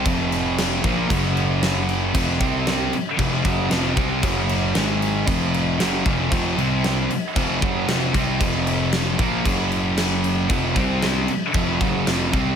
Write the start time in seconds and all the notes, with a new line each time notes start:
0.05 F1 F2 C3 F3, kick, crash
0.32 crash
0.58 snare, crash
0.83 A#1 A#2 F3 A#3, kick, crash
1.09 F#1 F#2 C#3 F#3, kick, crash
1.37 crash
1.63 snare, crash
1.89 crash
2.14 F1 F2 C3 F3, kick, crash
2.41 C2 C3 G3 C4, kick, crash
2.67 snare, crash
2.93 muted distorted electric guitar stroke, muted picked electric bass stroke, crash
3.18 F1 F2 C3 F3, kick, crash
3.44 F#1 F#2 C#3 F#3, kick, crash
3.71 F1 F2 C3 F3, snare, crash
3.96 C2 C3 G3 C4, kick, crash
4.23 F#1 F#2 C#3 F#3, kick, crash
4.49 crash
4.75 G#1 G#2 D#3 G#3, snare, crash
5.02 crash
5.27 F1 F2 C3 F3, kick, crash
5.54 crash
5.79 F#1 F#2 C#3 F#3, snare, crash
6.05 F1 F2 C3 F3, kick, crash
6.31 F1 F2 C3 F3, kick, crash
6.57 C2 C3 G3 C4, crash
6.84 snare, crash
7.09 muted picked electric bass stroke, muted distorted electric guitar stroke, crash
7.36 F1 F2 C3 F3, kick, crash
7.61 F#1 F#2 C#3 F#3, kick, crash
7.87 F1 F2 C3 F3, snare, crash
8.14 C2 C3 G3 C4, kick, crash
8.39 F1 F2 C3 F3, kick, crash
8.67 crash
8.93 snare, crash
9.18 A#1 A#2 F3 A#3, kick, crash
9.44 F#1 F#2 C#3 F#3, kick, crash
9.72 crash
9.97 snare, crash
10.24 crash
10.48 F1 F2 C3 F3, kick, crash
10.75 C2 C3 G3 C4, kick, crash
11.02 snare, crash
11.28 muted distorted electric guitar stroke, muted picked electric bass stroke, crash
11.54 F1 F2 C3 F3, kick, crash
11.80 F#1 F#2 C#3 F#3, kick, crash
12.07 F1 F2 C3 F3, snare, crash
12.33 C2 C3 G3 C4, kick, crash